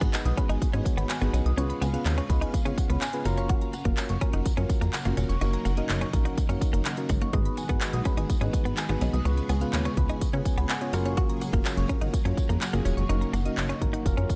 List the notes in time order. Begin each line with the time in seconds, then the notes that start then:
Already playing: D#3 G#3 B3 F#4
0.01 G#1 B3 D#4 F#4 G#4 B4 F#5, kick, closed hi-hat
0.13 D#5, muted clean electric guitar stroke, clap, closed hi-hat, tambourine
0.25 B1 D#6, closed hi-hat
0.37 B3 C#4 D#4 F#4 G#4 B4 B5, kick, closed hi-hat
0.49 G#1 D#4 G#5, closed hi-hat
0.62 kick, closed hi-hat, tambourine
0.73 G#2 B3 C#4 D#4 F#4 G#4 C#5 D#5, closed hi-hat
0.85 muted clean electric guitar stroke, kick, closed hi-hat, tambourine
0.97 G#1 B3 B5, closed hi-hat
1.09 G#5, muted clean electric guitar stroke, clap, closed hi-hat, tambourine
1.21 G#1 B3 D#4 F#4 G#4 B4, closed hi-hat
1.34 B1 C#4 D#5, closed hi-hat, tambourine
1.46 C2 D#6, closed hi-hat
1.57 C#2 C#3 G#3 B3 C#4 F4 G#4 B4 F5 C#6, closed hi-hat
1.70 B5, muted clean electric guitar stroke, closed hi-hat
1.81 C#2 B3 G#5, closed hi-hat, tambourine
1.93 B3 C#4 F4 G#4 B4 F5, closed hi-hat
2.06 D#2 C#5, clap, closed hi-hat, tambourine
2.18 C#4 C#6, closed hi-hat
2.29 C#2 B3 C#4 F4 G#4 B4 D#5 B5, muted clean electric guitar stroke, kick, closed hi-hat, tambourine
2.41 D#4 G#5, closed hi-hat
2.53 C#3 F5, kick, closed hi-hat, tambourine
2.65 C#3 B3 C#4 F4 G#4 C#5, closed hi-hat
2.77 F#5, muted clean electric guitar stroke, kick, closed hi-hat, tambourine
2.90 C#2 B3 B5, closed hi-hat
3.01 G#5, muted clean electric guitar stroke, clap, closed hi-hat, tambourine
3.13 B3 C#4 F4 G#4 B4, closed hi-hat
3.25 F#1 F#3 A#3 C#4 F4 F#4 A#4 C#5 A#5, closed hi-hat, tambourine
3.37 C#4 C#6, closed hi-hat
3.49 F#4 C#6, kick, closed hi-hat
3.61 A#5, closed hi-hat
3.73 F#5, muted clean electric guitar stroke, closed hi-hat, tambourine
3.85 F#1 A#3 C#4 F4 F#4 A#4 F5, kick, closed hi-hat
3.97 C#5, muted clean electric guitar stroke, clap, closed hi-hat, tambourine
4.09 F#1 C#6, closed hi-hat
4.21 A#3 C#4 F4 F#4 A#4 A#5, kick, closed hi-hat
4.33 F#1 D#4 F#5, closed hi-hat
4.46 F#2, kick, closed hi-hat, tambourine
4.57 F#2 A#3 C#4 F4 F#4 A#4 C#5, closed hi-hat
4.69 muted clean electric guitar stroke, kick, closed hi-hat, tambourine
4.81 F2 A#3 A#5, closed hi-hat
4.93 F#5, muted clean electric guitar stroke, clap, closed hi-hat, tambourine
5.05 F#1 A#3 C#4 F4 F#4 A#4, closed hi-hat
5.17 E1 C#4 C#5, closed hi-hat, tambourine
5.29 F1 C#6, closed hi-hat
5.41 F#1 A#3 C#4 D#4 F#4 A#4 C#6, closed hi-hat, tambourine
5.53 A#5, muted clean electric guitar stroke, closed hi-hat
5.65 F#1 A#3 F#5, closed hi-hat, tambourine
5.77 A#3 C#4 D#4 F#4 A#4 D#5, closed hi-hat
5.89 F#1 C#5, clap, closed hi-hat, tambourine
6.01 C#4 C#6, closed hi-hat
6.13 A#1 A#3 C#4 D#4 F#4 A#4 A#5, muted clean electric guitar stroke, kick, closed hi-hat, tambourine
6.25 D#4 F#5, closed hi-hat
6.38 F#2, kick, closed hi-hat, tambourine
6.49 F#2 A#3 C#4 D#4 F#4 A#4 C#5, closed hi-hat
6.61 muted clean electric guitar stroke, kick, closed hi-hat, tambourine
6.73 F#1 A#3 A#5, closed hi-hat
6.85 F#5, muted clean electric guitar stroke, clap, closed hi-hat, tambourine
6.97 A#3 C#4 D#4 F#4 A#4, closed hi-hat
7.09 G1 G#3 C#5, kick, closed hi-hat, tambourine
7.21 A#3 C#6, closed hi-hat
7.33 G#1 D#3 G#3 B3 D#4 F#4 G#4 B4 D#6, kick, closed hi-hat
7.45 B5, closed hi-hat
7.57 G#5, muted clean electric guitar stroke, closed hi-hat, tambourine
7.69 G#1 B3 D#4 F#4 G#4 B4 F#5, kick, closed hi-hat
7.81 D#5, muted clean electric guitar stroke, clap, closed hi-hat, tambourine
7.93 B1 D#6, closed hi-hat
8.05 B3 C#4 D#4 F#4 G#4 B4 B5, kick, closed hi-hat, tambourine
8.17 G#1 D#4 G#5, closed hi-hat
8.29 G#2, kick, closed hi-hat, tambourine
8.41 G#2 B3 C#4 D#4 F#4 G#4 B4 D#5, closed hi-hat
8.53 muted clean electric guitar stroke, kick, closed hi-hat, tambourine
8.65 G#1 B3 B5, closed hi-hat
8.77 G#5, muted clean electric guitar stroke, clap, closed hi-hat, tambourine
8.89 G#1 B3 D#4 F#4 G#4 B4, closed hi-hat
9.01 B1 C#4 D#5, closed hi-hat, tambourine
9.13 C2 D#6, closed hi-hat
9.25 C#2 C#3 B3 C#4 F4 G#4 B4 C#6, closed hi-hat, tambourine
9.37 B5, muted clean electric guitar stroke, closed hi-hat
9.49 C#2 B3 G#5, closed hi-hat, tambourine
9.61 B3 C#4 F4 G#4 B4 F5, closed hi-hat
9.73 D#2 C#5, clap, closed hi-hat, tambourine
9.85 C#4 C#6, closed hi-hat
9.97 C#2 B3 C#4 F4 G#4 B4 B5, muted clean electric guitar stroke, kick, closed hi-hat
10.09 D#4 G#5, closed hi-hat
10.21 C#3, kick, closed hi-hat, tambourine
10.33 C#3 B3 C#4 F4 G#4 B4 C#5, closed hi-hat
10.45 G#5, muted clean electric guitar stroke, kick, closed hi-hat, tambourine
10.57 C#2 B3 B5, closed hi-hat
10.69 F#5 G#5, muted clean electric guitar stroke, clap, closed hi-hat, tambourine
10.81 B3 C#4 F4 G#4 C#5, closed hi-hat
10.93 F#1 F#3 A#3 C#4 F4 F#4 A#4 C#5, closed hi-hat, tambourine
11.05 C#4 C#6, closed hi-hat
11.17 F#4 C#6, kick, closed hi-hat
11.29 A#5, closed hi-hat
11.41 F#5, muted clean electric guitar stroke, closed hi-hat, tambourine
11.53 F#1 A#3 C#4 F4 F#4 A#4 F5, kick, closed hi-hat
11.65 C#5, muted clean electric guitar stroke, clap, closed hi-hat, tambourine
11.77 F#1 C#6, closed hi-hat
11.89 A#3 C#4 F4 F#4 A#4 A#5, kick, closed hi-hat
12.01 G#1 D#4 F#5, closed hi-hat
12.14 kick, closed hi-hat, tambourine
12.25 F#2 A#3 C#4 F4 F#4 C#5, closed hi-hat
12.37 muted clean electric guitar stroke, kick, closed hi-hat, tambourine
12.49 F2 A#3 A#5, closed hi-hat
12.61 F#5, muted clean electric guitar stroke, clap, closed hi-hat, tambourine
12.73 F#1 A#3 C#4 F4 F#4 G#4, closed hi-hat
12.85 E1 C#4 C#5, closed hi-hat, tambourine
12.97 F1 C#6, closed hi-hat
13.09 F#1 C#3 A#3 C#4 D#4 F#4 A#4 C#6, closed hi-hat
13.21 A#5, muted clean electric guitar stroke, closed hi-hat
13.33 F#1 A#3 F#5, closed hi-hat, tambourine
13.45 A#3 C#4 D#4 F#4 A#4 D#5, closed hi-hat
13.57 F#1 C#5, clap, closed hi-hat, tambourine
13.69 C#4 C#6, closed hi-hat
13.81 G#1 A#3 C#4 D#4 F#4 A#4 A#5, muted clean electric guitar stroke, kick, closed hi-hat
13.93 D#4 F#5, closed hi-hat
14.05 F#1 F#3 A#3 C#4 F4 F#4 A#4 F5, kick, closed hi-hat, tambourine
14.17 F#2 A#3 C#4 F4 F#4 A#4 C#5, closed hi-hat
14.29 muted clean electric guitar stroke, kick, closed hi-hat, tambourine